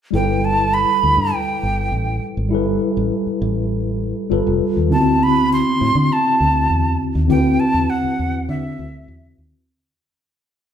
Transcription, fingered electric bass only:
0.13 0.84 G1 loud
1.03 1.16 D2 medium
1.17 1.31 G2 medium
1.63 1.89 G1 medium
1.92 2.19 A1 medium
2.37 2.52 G#1 medium
2.52 2.78 G1 loud
2.97 3.10 A1 medium
3.27 muted fingered electric bass stroke soft
3.42 4.12 A1 medium
4.31 4.45 G1 medium
4.47 4.60 F1 medium
4.77 4.92 D#2 medium
4.92 5.62 D2 loud
5.81 5.94 A2 medium
5.95 6.08 D3 medium
6.40 6.67 D2 medium
6.70 6.96 E2 medium
7.15 7.28 D#2 medium
7.30 7.56 D2 loud
7.74 7.87 E2 medium
8.04 muted fingered electric bass stroke soft
8.19 8.46 E2 medium
8.49 8.75 D3 loud
8.79 9.05 D2 medium
9.08 9.35 E2 medium
9.38 9.51 D#2 medium

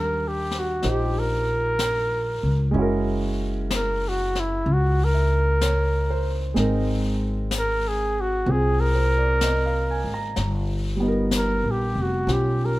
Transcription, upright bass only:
0.00 0.80 D#2 medium
0.84 2.39 A#1 medium
2.43 2.73 C#2 medium
2.74 4.61 F#1 medium
4.66 6.52 C#2 medium
6.56 8.42 G#1 medium
8.46 10.01 C2 medium
10.04 10.34 G#1 medium
10.37 11.61 G1 medium
11.64 11.94 A#1 medium
11.95 12.25 F1 medium
12.27 12.79 B1 medium

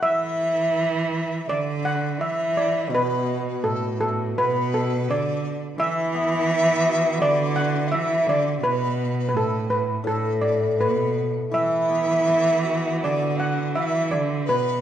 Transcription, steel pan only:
0.03 1.53 E5 loud
1.49 1.86 D5 loud
1.85 2.18 F#5 medium
2.21 2.58 E5 medium
2.57 2.90 D5 medium
2.95 3.68 B4 medium
3.64 3.99 A4 medium
4.01 4.38 A4 medium
4.38 4.75 B4 medium
4.74 5.10 A4 medium
5.11 5.59 D5 medium
5.80 7.26 E5 loud
7.22 7.59 D5 loud
7.56 7.90 F#5 medium
7.92 8.29 E5 medium
8.29 8.65 D5 medium
8.63 9.28 B4 medium
9.29 9.35 B4 medium
9.37 9.72 A4 medium
9.70 10.07 B4 medium
10.07 10.44 A4 medium
10.42 10.80 D5 medium
10.81 11.32 B4 medium
11.54 13.07 E5 medium
13.04 13.38 D5 medium
13.40 13.73 F#5 medium
13.75 14.12 E5 medium
14.11 14.48 D5 medium
14.49 14.81 B4 medium

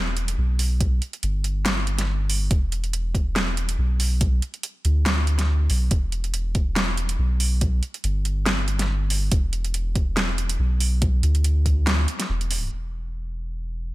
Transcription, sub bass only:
0.00 0.36 E1 medium
0.38 1.00 B1 medium
1.23 2.49 G1 loud
2.51 3.77 E1 loud
3.79 4.41 B1 medium
4.85 5.68 D2 medium
5.70 5.90 B1 loud
5.91 7.17 E1 medium
7.19 7.81 B1 medium
8.04 9.30 G1 loud
9.32 10.58 E1 medium
10.59 11.22 B1 medium
11.23 12.07 D2 loud
12.30 12.71 E1 loud
12.72 13.95 E1 medium

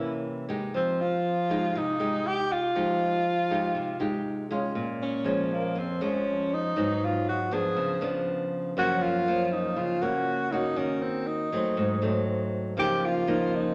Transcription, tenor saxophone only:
0.00 0.25 E4 medium
0.76 1.03 C4 medium
1.01 1.79 F4 medium
1.78 2.28 D#4 loud
2.27 2.54 G4 loud
2.53 4.27 F4 loud
5.03 5.55 C#4 medium
5.53 5.81 A#3 medium
5.79 6.04 C4 medium
6.03 6.56 C#4 medium
6.54 7.06 D#4 loud
7.04 7.28 F4 medium
7.29 7.55 F#4 medium
7.54 8.03 G#4 medium
8.79 9.04 F#4 loud
9.02 9.54 F4 loud
9.53 9.79 D#4 medium
9.78 10.04 F4 loud
10.02 10.54 F#4 loud
10.52 10.79 D#4 medium
10.78 11.04 C#4 medium
11.02 11.29 C4 medium
11.27 12.27 D#4 medium
12.79 13.07 G4 loud
13.06 13.57 F4 medium
13.56 13.74 D#4 medium

